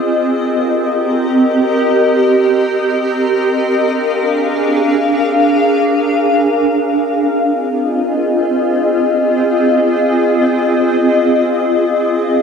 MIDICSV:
0, 0, Header, 1, 2, 480
1, 0, Start_track
1, 0, Tempo, 500000
1, 11926, End_track
2, 0, Start_track
2, 0, Title_t, "Ambient pad"
2, 0, Program_c, 0, 92
2, 0, Note_on_c, 0, 60, 83
2, 0, Note_on_c, 0, 75, 88
2, 76, Note_on_c, 0, 67, 73
2, 77, Note_on_c, 0, 70, 74
2, 3378, Note_off_c, 0, 60, 0
2, 3378, Note_off_c, 0, 75, 0
2, 3382, Note_off_c, 0, 67, 0
2, 3419, Note_on_c, 0, 62, 81
2, 3419, Note_on_c, 0, 68, 74
2, 3419, Note_on_c, 0, 77, 89
2, 6717, Note_off_c, 0, 70, 0
2, 6723, Note_off_c, 0, 68, 0
2, 6724, Note_off_c, 0, 62, 0
2, 6724, Note_off_c, 0, 77, 0
2, 6756, Note_on_c, 0, 65, 69
2, 6756, Note_on_c, 0, 68, 73
2, 6757, Note_on_c, 0, 75, 86
2, 6758, Note_on_c, 0, 60, 77
2, 11926, Note_off_c, 0, 60, 0
2, 11926, Note_off_c, 0, 65, 0
2, 11926, Note_off_c, 0, 68, 0
2, 11926, Note_off_c, 0, 75, 0
2, 11926, End_track
0, 0, End_of_file